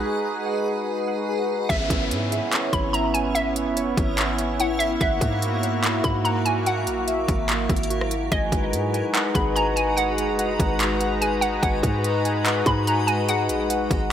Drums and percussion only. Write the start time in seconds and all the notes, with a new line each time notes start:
1.70 kick, closed hi-hat
1.90 kick, closed hi-hat
2.11 closed hi-hat
2.32 closed hi-hat
2.52 clap, closed hi-hat
2.73 kick, closed hi-hat
2.94 closed hi-hat
3.15 closed hi-hat
3.35 closed hi-hat
3.56 closed hi-hat
3.77 closed hi-hat
3.97 kick, closed hi-hat
4.18 clap, closed hi-hat
4.38 closed hi-hat
4.60 closed hi-hat
4.80 closed hi-hat
5.01 kick, closed hi-hat
5.21 kick, closed hi-hat
5.42 closed hi-hat
5.63 closed hi-hat
5.83 clap, closed hi-hat
6.04 kick, closed hi-hat
6.25 closed hi-hat
6.46 closed hi-hat
6.66 closed hi-hat
6.87 closed hi-hat
7.08 closed hi-hat
7.28 kick, closed hi-hat
7.49 clap, closed hi-hat
7.69 kick, closed hi-hat
7.76 closed hi-hat
7.83 closed hi-hat
7.90 closed hi-hat
8.01 cross-stick
8.11 closed hi-hat
8.32 kick, closed hi-hat
8.52 kick, closed hi-hat
8.73 closed hi-hat
8.94 closed hi-hat
9.15 clap, closed hi-hat
9.35 kick, closed hi-hat
9.56 closed hi-hat
9.77 closed hi-hat
9.98 closed hi-hat
10.18 closed hi-hat
10.39 closed hi-hat
10.60 kick, closed hi-hat
10.80 clap, closed hi-hat
11.01 closed hi-hat
11.22 closed hi-hat
11.42 closed hi-hat
11.63 kick, closed hi-hat
11.83 kick, closed hi-hat
12.04 closed hi-hat
12.25 closed hi-hat
12.46 clap, closed hi-hat
12.66 kick, closed hi-hat
12.87 closed hi-hat
13.08 closed hi-hat
13.29 closed hi-hat
13.49 closed hi-hat
13.70 closed hi-hat
13.91 kick, closed hi-hat